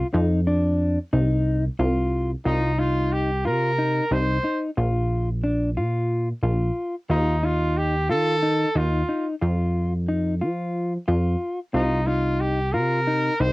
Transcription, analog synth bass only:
0.14 0.98 F2 medium
1.13 1.69 C2 medium
1.79 2.35 C2 medium
2.45 3.47 C2 medium
3.45 4.01 C3 medium
4.11 4.39 C2 medium
4.77 5.78 A#1 loud
5.77 6.33 A#2 medium
6.43 6.71 A#1 medium
7.09 8.11 D#2 medium
8.09 8.65 D#3 medium
8.75 9.03 D#2 medium
9.42 10.43 F2 medium
10.42 10.98 F3 medium
11.08 11.36 F2 medium
11.74 12.75 C2 medium
12.74 13.30 C3 medium
13.40 13.53 C2 medium

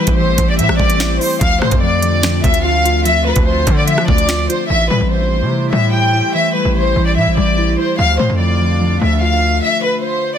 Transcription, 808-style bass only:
0.07 0.37 A1 loud
0.38 0.60 A1 loud
0.59 0.71 A2 loud
0.69 0.79 A1 loud
0.79 1.19 A1 loud
1.41 1.61 D2 loud
1.62 1.71 A2 loud
1.72 2.41 F2 loud
2.44 3.33 D2 loud
3.36 3.66 D2 loud
3.67 3.99 D3 loud
3.98 4.08 F3 medium
4.08 4.48 D2 loud
4.70 4.90 A1 loud
4.90 5.00 A2 loud
5.01 5.43 A1 loud
5.42 5.71 C3 loud
5.73 6.22 A2 loud
6.65 6.95 A1 medium
6.96 7.18 A1 loud
7.16 7.28 A2 loud
7.27 7.37 A1 medium
7.37 7.77 A1 loud
7.99 8.18 D2 loud
8.19 8.29 A2 loud
8.30 8.99 F2 medium
9.01 9.61 D2 loud

